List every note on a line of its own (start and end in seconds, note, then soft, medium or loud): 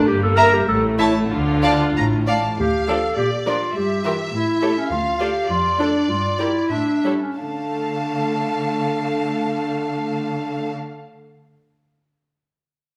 0.07 0.57 G1 medium
0.07 0.57 G2 medium
0.07 0.68 A#3 medium
0.07 0.22 G4 medium
0.23 0.38 A4 medium
0.36 0.55 A#4 medium
0.36 0.51 A#4 medium
0.36 0.51 E5 soft
0.36 0.51 A#5 medium
0.53 0.67 G4 medium
0.67 1.20 A1 soft
0.67 1.20 A2 soft
0.67 1.29 A3 medium
0.67 0.82 A4 medium
0.99 1.13 E4 medium
0.99 1.14 C#5 soft
0.99 1.13 E5 soft
0.99 1.14 A5 soft
1.30 1.85 D2 medium
1.30 1.85 D3 medium
1.30 2.25 D4 medium
1.30 2.28 F4 soft
1.64 1.79 D5 soft
1.64 1.78 F5 soft
1.64 1.79 A5 soft
1.96 2.48 A1 soft
1.96 2.49 A2 soft
1.96 2.05 A#5 soft
2.28 2.42 D5 soft
2.28 2.42 F5 soft
2.28 2.59 A5 soft
2.58 3.05 D2 medium
2.58 2.89 G4 medium
2.58 3.14 F5 medium
2.88 2.96 F3 soft
2.88 2.97 D4 soft
2.88 3.16 A4 medium
2.88 2.96 A4 soft
2.88 2.96 D5 soft
3.17 3.63 A#2 soft
3.17 3.30 G4 medium
3.17 3.75 D5 soft
3.46 3.55 F3 soft
3.46 3.55 D4 soft
3.46 3.75 F4 medium
3.46 3.55 A#4 soft
3.46 3.55 D5 soft
3.75 4.21 G2 soft
3.75 4.04 G4 soft
3.75 4.89 E5 medium
4.04 4.12 E3 soft
4.04 4.17 F4 soft
4.04 4.13 G4 soft
4.04 4.13 A#4 soft
4.04 4.13 E5 soft
4.32 4.78 A2 soft
4.32 4.79 E4 medium
4.61 4.69 A3 soft
4.61 4.70 G4 soft
4.61 4.70 A4 soft
4.61 4.70 C#5 soft
4.77 4.90 C#4 medium
4.90 5.36 D2 soft
4.90 5.19 F4 soft
4.90 5.48 F5 soft
5.19 5.28 A3 soft
5.19 5.28 F4 soft
5.19 5.49 G4 medium
5.19 5.27 A4 soft
5.19 5.27 D5 soft
5.49 5.96 F2 soft
5.49 5.81 F4 medium
5.49 6.71 D5 soft
5.79 5.87 A3 soft
5.79 5.87 D4 soft
5.79 6.11 D4 medium
5.79 5.87 A4 soft
5.79 5.87 D5 soft
6.08 6.57 G2 medium
6.08 6.39 F4 medium
6.39 6.48 G3 soft
6.39 6.72 E4 medium
6.39 6.48 G4 soft
6.39 6.48 A#4 soft
6.39 6.47 D5 soft
6.70 7.23 A2 soft
6.70 7.21 D4 medium
6.70 7.03 E5 soft
7.04 7.12 G3 soft
7.04 7.12 E4 soft
7.04 7.13 A4 soft
7.04 7.12 C#5 soft
7.21 7.36 C#4 soft
7.36 10.70 D3 soft
7.36 10.71 A3 soft
7.36 10.70 D4 soft
7.36 10.71 F5 soft
7.36 10.71 A5 soft